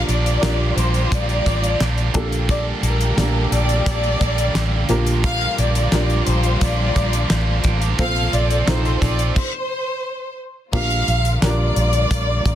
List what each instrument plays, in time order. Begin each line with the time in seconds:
Already playing: upright piano A#2 F3 D4 F4 G4 A#4, string section D3 G3 A#3 F4
0.08 fingered electric bass A#1, overdriven electric guitar F3 A#3 D4 G4, violin section D5, closed hi-hat
0.26 closed hi-hat
0.41 fingered electric bass A#1, overdriven electric guitar A#2 D3 F3 A#3 D4 G4, upright piano D4 F4 G4 A#4, snare, clap, closed hi-hat
0.77 fingered electric bass A#1, overdriven electric guitar F3 A#3 D4 G4, violin section C5, closed hi-hat
0.94 closed hi-hat
1.11 fingered electric bass A#1, overdriven electric guitar F3 A#3 D4 G4, violin section D5, kick, closed hi-hat
1.29 closed hi-hat
1.46 fingered electric bass A1, overdriven electric guitar F3 A#3 D4 G4, kick, closed hi-hat
1.64 closed hi-hat
1.80 fingered electric bass A#1, overdriven electric guitar A#2 D3 F3 A#3 D4 G4, snare, clap, closed hi-hat
1.98 closed hi-hat
2.14 fingered electric bass A#1, upright piano A#2 A#3 D4 G4 A4, string section G3 G4, overdriven electric guitar G3 A#3 D4 A4, kick, closed hi-hat
2.32 closed hi-hat
2.49 overdriven electric guitar A#2 D3 G3 A#3 D4 A4, violin section D5, kick, closed hi-hat
2.82 fingered electric bass A#1, overdriven electric guitar G3 A#3 D4 A4, violin section A#4, closed hi-hat
3.01 closed hi-hat
3.17 fingered electric bass A#1, overdriven electric guitar A#2 D3 G3 A#3 D4 A4, upright piano A#3 D4 G4 D5, snare, clap, closed hi-hat
3.52 fingered electric bass A#1, overdriven electric guitar G3 A#3 D4 A4, violin section D5, closed hi-hat
3.69 closed hi-hat
3.86 fingered electric bass A#1, overdriven electric guitar G3 A#3 D4 A4, violin section D5, kick, closed hi-hat
4.04 closed hi-hat
4.21 fingered electric bass A#1, overdriven electric guitar G3 A#3 D4 A4, kick, closed hi-hat
4.38 closed hi-hat
4.54 fingered electric bass A1, overdriven electric guitar A#2 D3 G3 A#3 D4 A4, snare, clap, closed hi-hat
4.89 fingered electric bass A#1, upright piano A#2 F3 D4 F4 G4 A#4, overdriven electric guitar F3 A#3 D4 G4, string section G3 F4, closed hi-hat
5.07 closed hi-hat
5.24 overdriven electric guitar A#2 D3 F3 A#3 D4 G4, violin section F5, kick, closed hi-hat
5.41 closed hi-hat
5.58 fingered electric bass A#1, overdriven electric guitar F3 A#3 D4 G4, violin section D5, closed hi-hat
5.75 closed hi-hat
5.92 fingered electric bass A#1, overdriven electric guitar A#2 D3 F3 A#3 D4 G4, upright piano D4 F4 G4 A#4, snare, clap, closed hi-hat
6.10 closed hi-hat
6.26 fingered electric bass A#1, overdriven electric guitar F3 A#3 D4 G4, violin section C5, closed hi-hat
6.43 closed hi-hat
6.61 fingered electric bass A#1, overdriven electric guitar F3 A#3 D4 G4, violin section D5, kick, closed hi-hat
6.95 fingered electric bass A#1, overdriven electric guitar F3 A#3 D4 G4, kick, closed hi-hat
7.13 closed hi-hat
7.30 fingered electric bass A1, overdriven electric guitar A#2 D3 F3 A#3 D4 G4, snare, clap, closed hi-hat
7.64 fingered electric bass A1, overdriven electric guitar F3 A#3 D4 G4, kick, snare, closed hi-hat
7.82 closed hi-hat
7.98 fingered electric bass A#1, upright piano A#2 C4 F4 A4 C5, string section C3 F3 A4, overdriven electric guitar A#3 C4 F4 A4, violin section F5, kick, closed hi-hat
8.16 closed hi-hat
8.32 fingered electric bass A#1, overdriven electric guitar C4 F4 A4, violin section D5, closed hi-hat
8.51 closed hi-hat
8.66 fingered electric bass A#1, overdriven electric guitar A#3 C4 F4 A4, upright piano C4 D#4 F4 A4, violin section C5, snare, clap, closed hi-hat
8.85 closed hi-hat
9.00 fingered electric bass A#1, overdriven electric guitar C4 F4 A4, violin section D5, kick, closed hi-hat
9.19 closed hi-hat
9.36 violin section C5, kick, crash
10.72 fingered electric bass A#1, upright piano A#2 F3 D4 F4 G4 A#4, string section D3 G3 A#3 F4, violin section F5, kick, crash
10.90 closed hi-hat
11.08 fingered electric bass A#1, closed hi-hat
11.25 closed hi-hat
11.42 fingered electric bass A#1, upright piano D4 F4 G4 A#4, violin section D5, snare, clap, closed hi-hat
11.76 fingered electric bass A#1, closed hi-hat
11.93 closed hi-hat
12.11 fingered electric bass A#1, kick, closed hi-hat
12.45 fingered electric bass A1, kick, closed hi-hat